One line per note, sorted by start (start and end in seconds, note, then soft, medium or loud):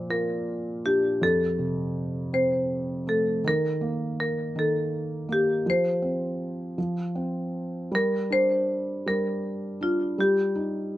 0.00 1.17 A#2 medium
0.00 0.81 F3 soft
0.00 0.13 C5 medium
0.10 1.19 F4 medium
0.10 0.81 A#4 medium
0.85 1.21 D4 soft
0.85 1.20 G4 medium
1.22 3.41 F2 medium
1.22 2.38 A4 medium
1.59 3.04 C3 medium
2.33 3.42 C4 medium
2.33 3.11 C5 medium
3.07 3.43 A3 medium
3.07 3.43 A4 medium
3.44 4.54 D#3 medium
3.44 4.19 A#4 loud
3.81 5.25 A#3 medium
4.20 4.57 A#4 medium
4.56 5.62 D#3 medium
4.56 5.33 A4 medium
5.29 5.64 A#3 soft
5.29 5.48 G4 medium
5.66 6.75 F3 medium
5.66 7.52 C5 medium
6.02 6.75 C4 soft
6.78 7.89 F3 medium
7.15 7.89 C4 soft
7.92 9.05 G3 medium
7.92 8.33 A#4 medium
8.30 9.77 D4 soft
8.30 9.09 C5 medium
9.06 10.15 G3 medium
9.06 9.78 A#4 medium
9.81 10.17 D4 soft
9.81 10.20 F4 medium
10.18 10.97 G3 medium
10.18 10.97 G4 medium
10.55 10.97 D#4 medium